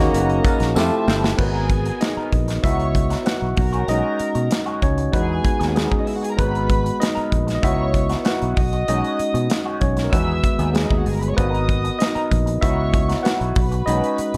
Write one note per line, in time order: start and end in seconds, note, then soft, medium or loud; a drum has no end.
0.00 0.72 B2 medium
0.00 0.79 A#3 loud
0.00 0.41 B3 medium
0.00 0.79 C#4 medium
0.00 0.41 D#4 medium
0.00 0.73 D#4 medium
0.00 0.79 D#4 medium
0.00 0.41 F#4 medium
0.00 0.72 F#4 loud
0.00 0.73 F#4 medium
0.00 0.77 F#4 loud
0.00 0.79 G#4 loud
0.00 0.73 A#4 medium
0.00 0.72 D#5 loud
0.00 0.72 A#5 loud
0.14 0.39 F#1 medium
0.14 0.33 F#3 medium
0.14 0.30 B3 loud
0.14 0.29 D#4 loud
0.14 0.28 A#4 loud
0.14 closed hi-hat medium
0.29 muted clean electric guitar stroke soft
0.29 closed hi-hat soft
0.45 0.60 F#3 medium
0.45 0.61 B3 medium
0.45 0.61 D#4 medium
0.45 0.60 A#4 medium
0.45 kick loud
0.45 closed hi-hat medium
0.45 tambourine soft
0.60 0.73 A#1 medium
0.60 muted clean electric guitar stroke soft
0.60 snare soft
0.60 closed hi-hat medium
0.74 0.89 F2 medium
0.74 1.07 C3 medium
0.74 1.39 C3 medium
0.74 1.39 F3 medium
0.74 0.82 G#3 medium
0.74 1.07 A3 medium
0.74 0.80 A3 medium
0.74 1.38 A3 medium
0.74 1.26 C4 medium
0.74 1.26 E4 medium
0.74 1.37 F4 medium
0.74 1.07 F4 medium
0.74 1.27 G4 medium
0.74 1.40 A4 medium
0.74 1.37 E5 medium
0.74 1.39 E5 medium
0.74 1.37 A5 medium
0.74 muted clean electric guitar stroke soft
0.74 snare medium
0.74 tambourine loud
0.81 1.29 A3 medium
0.92 muted clean electric guitar stroke soft
1.08 1.33 G1 medium
1.08 1.27 F3 medium
1.08 1.24 C4 medium
1.08 1.23 E4 medium
1.08 1.23 A4 medium
1.08 snare medium
1.08 tambourine medium
1.24 muted clean electric guitar stroke soft
1.24 snare medium
1.37 1.90 G#1 medium
1.37 1.68 F#3 medium
1.37 1.97 B3 medium
1.37 1.68 B3 medium
1.37 1.68 D#4 medium
1.37 2.28 F#4 medium
1.37 2.30 G#4 medium
1.37 2.27 A#4 medium
1.37 1.69 A#4 medium
1.37 2.03 B4 medium
1.37 2.30 G#5 loud
1.37 kick loud
1.37 crash medium
1.69 kick medium
1.69 closed hi-hat medium
1.85 muted clean electric guitar stroke soft
1.85 closed hi-hat soft
2.01 2.60 D#4 medium
2.01 2.63 D#5 medium
2.01 muted clean electric guitar stroke soft
2.01 snare loud
2.01 closed hi-hat loud
2.17 2.31 F#3 medium
2.17 2.32 B3 medium
2.17 2.32 D#4 medium
2.17 2.33 A#4 medium
2.17 muted fingered electric bass stroke soft
2.32 2.58 A#1 medium
2.32 muted clean electric guitar stroke soft
2.32 kick medium
2.32 closed hi-hat medium
2.48 muted clean electric guitar stroke soft
2.48 snare soft
2.48 closed hi-hat soft
2.63 3.14 C#2 medium
2.63 2.83 E3 medium
2.63 2.83 B3 medium
2.63 3.54 B3 soft
2.63 2.84 D#4 medium
2.63 3.23 E4 medium
2.63 3.26 F#4 medium
2.63 2.84 F#4 medium
2.63 3.25 C#5 medium
2.63 3.54 D#5 soft
2.63 3.28 E5 loud
2.63 3.25 C#6 medium
2.63 kick medium
2.63 closed hi-hat medium
2.80 closed hi-hat soft
2.95 muted clean electric guitar stroke soft
2.95 kick medium
2.95 closed hi-hat medium
3.10 3.24 E3 soft
3.10 3.25 B3 soft
3.10 3.26 D#4 soft
3.10 3.26 F#4 medium
3.10 snare soft
3.10 closed hi-hat soft
3.25 3.45 E3 medium
3.25 3.46 B3 medium
3.25 3.46 D#4 medium
3.25 3.85 F#4 medium
3.25 3.46 F#4 medium
3.25 3.91 F#5 medium
3.25 snare loud
3.25 closed hi-hat medium
3.42 3.55 B1 medium
3.57 3.83 B1 loud
3.57 4.80 A#4 medium
3.57 4.80 A#5 medium
3.57 muted clean electric guitar stroke soft
3.57 kick loud
3.57 open hi-hat medium
3.72 3.86 D#3 soft
3.72 3.87 G#3 soft
3.72 3.88 C#4 soft
3.72 3.88 F#4 medium
3.72 closed hi-hat soft
3.88 4.01 B1 medium
3.88 4.17 D#3 medium
3.88 4.17 G#3 medium
3.88 5.10 G#3 medium
3.88 4.17 C#4 medium
3.88 4.83 C#4 soft
3.88 4.79 D#4 medium
3.88 4.18 F#4 medium
3.88 4.85 D#5 loud
3.88 closed hi-hat medium
4.19 muted fingered electric bass stroke soft
4.19 closed hi-hat medium
4.35 4.48 B2 medium
4.35 muted clean electric guitar stroke soft
4.35 closed hi-hat soft
4.50 muted clean electric guitar stroke soft
4.50 snare loud
4.50 closed hi-hat loud
4.66 4.81 D#3 medium
4.66 4.81 G#3 medium
4.66 4.81 C#4 medium
4.66 4.82 F#4 medium
4.66 closed hi-hat soft
4.82 5.08 C#2 medium
4.82 5.12 C#4 medium
4.82 5.15 C#5 medium
4.82 muted clean electric guitar stroke soft
4.82 kick medium
4.82 closed hi-hat medium
4.98 muted clean electric guitar stroke soft
4.98 closed hi-hat soft
5.12 5.39 E2 medium
5.12 5.32 F#3 medium
5.12 5.76 G#3 medium
5.12 5.33 B3 medium
5.12 5.73 B3 medium
5.12 5.33 D#4 medium
5.12 6.04 D#4 soft
5.12 6.04 F#4 medium
5.12 5.76 G#4 medium
5.12 5.33 G#4 medium
5.12 5.72 B4 medium
5.12 5.76 G#5 medium
5.12 kick medium
5.12 closed hi-hat medium
5.44 muted clean electric guitar stroke soft
5.44 kick medium
5.44 closed hi-hat medium
5.60 5.86 D#2 medium
5.60 5.73 F#3 soft
5.60 5.74 B3 soft
5.60 5.75 D#4 medium
5.60 5.75 G#4 medium
5.60 snare soft
5.60 closed hi-hat soft
5.75 6.04 F#3 medium
5.75 6.35 G#3 medium
5.75 6.05 B3 medium
5.75 6.05 D#4 medium
5.75 6.40 G#4 medium
5.75 6.05 G#4 medium
5.75 snare medium
5.75 closed hi-hat medium
5.84 5.92 B3 medium
5.84 5.92 B4 medium
5.91 5.99 C#4 medium
5.91 5.99 C#5 medium
5.91 kick medium
5.99 6.07 D#4 medium
5.99 6.07 D#5 medium
6.06 6.15 E4 medium
6.06 6.15 E5 medium
6.06 muted clean electric guitar stroke soft
6.06 open hi-hat medium
6.15 6.23 F#4 medium
6.15 6.23 F#5 medium
6.21 6.31 G#4 medium
6.21 6.31 G#5 medium
6.21 muted clean electric guitar stroke soft
6.21 closed hi-hat soft
6.31 6.39 A#4 medium
6.31 6.39 A#5 medium
6.37 6.89 G#1 medium
6.37 6.67 F#3 medium
6.37 7.28 G#3 medium
6.37 6.67 B3 medium
6.37 6.98 B3 medium
6.37 6.67 D#4 medium
6.37 7.29 F#4 medium
6.37 6.67 A#4 medium
6.37 7.03 B4 loud
6.37 7.31 B4 medium
6.37 7.31 B5 loud
6.37 kick medium
6.37 closed hi-hat medium
6.55 closed hi-hat soft
6.70 kick medium
6.70 closed hi-hat medium
6.84 muted clean electric guitar stroke soft
6.84 closed hi-hat soft
7.00 7.53 D#4 medium
7.00 7.52 D#5 medium
7.00 muted clean electric guitar stroke soft
7.00 snare loud
7.00 closed hi-hat loud
7.15 7.30 F#3 medium
7.15 7.31 B3 medium
7.15 7.31 D#4 medium
7.15 7.32 A#4 medium
7.15 muted fingered electric bass stroke soft
7.15 closed hi-hat soft
7.32 7.58 A#1 medium
7.32 muted clean electric guitar stroke soft
7.32 kick medium
7.32 closed hi-hat medium
7.47 muted clean electric guitar stroke soft
7.47 snare soft
7.47 closed hi-hat soft
7.55 7.63 D#5 medium
7.62 8.14 C#2 medium
7.62 7.82 E3 medium
7.62 7.83 B3 medium
7.62 8.53 B3 medium
7.62 7.83 D#4 medium
7.62 8.23 E4 medium
7.62 7.83 F#4 medium
7.62 8.25 F#4 medium
7.62 8.25 C#5 medium
7.62 8.53 D#5 soft
7.62 8.22 E5 loud
7.62 8.25 C#6 medium
7.62 kick medium
7.62 closed hi-hat medium
7.94 muted clean electric guitar stroke soft
7.94 kick medium
7.94 closed hi-hat medium
8.09 8.23 E3 soft
8.09 8.24 B3 soft
8.09 8.25 D#4 soft
8.09 8.25 F#4 soft
8.09 snare soft
8.09 closed hi-hat soft
8.25 8.54 E3 medium
8.25 8.54 B3 medium
8.25 8.55 D#4 medium
8.25 8.85 F#4 medium
8.25 8.55 F#4 medium
8.25 8.90 F#5 medium
8.25 snare loud
8.25 closed hi-hat medium
8.42 8.55 B1 medium
8.42 closed hi-hat soft
8.56 8.83 B1 medium
8.56 9.79 D#5 medium
8.56 9.79 D#6 medium
8.56 muted clean electric guitar stroke soft
8.56 kick loud
8.56 open hi-hat medium
8.73 muted clean electric guitar stroke soft
8.73 closed hi-hat soft
8.88 9.01 B1 medium
8.88 9.17 D#3 medium
8.88 10.09 G#3 medium
8.88 9.17 G#3 medium
8.88 9.82 C#4 medium
8.88 9.18 C#4 medium
8.88 10.10 D#4 medium
8.88 9.18 F#4 medium
8.88 9.78 D#5 loud
8.88 closed hi-hat medium
9.04 closed hi-hat soft
9.19 muted fingered electric bass stroke soft
9.19 closed hi-hat medium
9.34 9.47 B2 medium
9.34 muted clean electric guitar stroke soft
9.34 closed hi-hat soft
9.50 muted clean electric guitar stroke soft
9.50 snare loud
9.50 closed hi-hat loud
9.66 9.80 D#3 medium
9.66 9.81 G#3 medium
9.66 9.81 C#4 medium
9.66 9.81 F#4 medium
9.81 10.07 B1 medium
9.81 10.05 C#4 medium
9.81 10.04 C#5 medium
9.81 muted clean electric guitar stroke soft
9.81 kick medium
9.81 closed hi-hat soft
9.97 muted clean electric guitar stroke soft
9.97 snare soft
9.97 closed hi-hat soft
10.04 10.12 A#4 medium
10.12 10.38 E2 medium
10.12 10.55 D#3 soft
10.12 10.32 F#3 medium
10.12 10.55 G#3 medium
10.12 10.33 B3 medium
10.12 10.72 B3 medium
10.12 10.33 D#4 medium
10.12 10.55 F#4 medium
10.12 10.33 G#4 medium
10.12 10.77 B4 medium
10.12 10.75 E5 medium
10.12 10.76 E6 loud
10.12 kick medium
10.12 closed hi-hat medium
10.44 muted clean electric guitar stroke soft
10.44 kick medium
10.44 closed hi-hat medium
10.59 10.85 D#2 medium
10.59 10.73 F#3 soft
10.59 10.74 B3 soft
10.59 10.74 D#4 soft
10.59 10.75 G#4 medium
10.59 closed hi-hat soft
10.74 11.04 F#3 medium
10.74 11.34 G#3 medium
10.74 11.04 B3 medium
10.74 11.04 D#4 medium
10.74 11.39 G#4 medium
10.74 11.05 G#4 medium
10.74 snare medium
10.74 closed hi-hat medium
10.83 10.91 D#4 medium
10.83 10.91 D#5 medium
10.90 11.04 D#2 medium
10.90 10.99 E4 medium
10.90 10.99 E5 medium
10.90 kick medium
10.98 11.07 F#4 medium
10.98 11.07 F#5 medium
11.06 11.32 G1 medium
11.06 11.15 G#4 medium
11.06 11.15 G#5 medium
11.06 muted clean electric guitar stroke soft
11.06 open hi-hat medium
11.13 11.22 A#4 medium
11.13 11.22 A#5 medium
11.21 11.30 B4 medium
11.21 11.30 B5 medium
11.21 muted clean electric guitar stroke soft
11.21 closed hi-hat soft
11.29 11.37 C#5 medium
11.29 11.37 C#6 medium
11.37 11.89 G#1 medium
11.37 11.49 F3 medium
11.37 11.49 A#3 medium
11.37 11.97 B3 medium
11.37 11.50 D4 medium
11.37 12.59 F#4 medium
11.37 11.51 A4 medium
11.37 12.58 A#4 medium
11.37 11.96 B4 medium
11.37 12.29 D#5 medium
11.37 12.29 D#6 loud
11.37 kick loud
11.37 closed hi-hat medium
11.49 11.66 F#3 medium
11.49 11.67 B3 medium
11.49 11.67 D#4 medium
11.49 11.67 A#4 medium
11.55 closed hi-hat soft
11.69 kick medium
11.69 closed hi-hat medium
11.84 muted clean electric guitar stroke soft
11.84 closed hi-hat soft
11.99 12.59 D#4 medium
11.99 12.62 D#5 medium
11.99 muted clean electric guitar stroke soft
11.99 snare loud
11.99 closed hi-hat loud
12.15 12.30 F#3 medium
12.15 12.30 B3 medium
12.15 12.31 D#4 medium
12.15 12.31 A#4 medium
12.15 muted fingered electric bass stroke soft
12.15 closed hi-hat soft
12.31 12.57 A#1 medium
12.31 muted clean electric guitar stroke soft
12.31 kick medium
12.31 closed hi-hat medium
12.46 muted clean electric guitar stroke soft
12.46 closed hi-hat soft
12.61 13.14 C#2 medium
12.61 12.82 E3 medium
12.61 13.52 B3 soft
12.61 12.82 B3 medium
12.61 12.82 D#4 medium
12.61 13.22 E4 medium
12.61 13.24 F#4 medium
12.61 12.83 F#4 medium
12.61 13.24 C#5 medium
12.61 13.53 D#5 soft
12.61 13.21 E5 loud
12.61 13.24 C#6 medium
12.61 kick loud
12.61 closed hi-hat medium
12.93 muted clean electric guitar stroke soft
12.93 kick medium
12.93 closed hi-hat medium
13.09 13.22 E3 soft
13.09 13.23 B3 soft
13.09 13.23 D#4 soft
13.09 13.24 F#4 soft
13.09 snare soft
13.09 closed hi-hat soft
13.23 13.53 E3 medium
13.23 13.53 B3 medium
13.23 13.54 D#4 medium
13.23 13.54 F#4 medium
13.23 13.84 F#4 medium
13.23 13.89 F#5 medium
13.23 snare medium
13.23 closed hi-hat medium
13.41 13.54 B1 medium
13.41 closed hi-hat soft
13.55 13.82 B1 medium
13.55 14.37 B4 medium
13.55 14.37 B5 loud
13.55 muted clean electric guitar stroke soft
13.55 kick loud
13.55 open hi-hat medium
13.72 muted clean electric guitar stroke soft
13.72 closed hi-hat soft
13.86 14.00 B1 medium
13.86 14.16 D#3 medium
13.86 14.37 G#3 medium
13.86 14.17 G#3 medium
13.86 14.37 C#4 soft
13.86 14.17 C#4 medium
13.86 14.37 D#4 medium
13.86 14.17 F#4 medium
13.86 14.37 D#5 medium
13.86 closed hi-hat medium
14.04 closed hi-hat soft
14.18 muted fingered electric bass stroke soft
14.18 closed hi-hat medium
14.34 14.37 B2 medium
14.34 closed hi-hat soft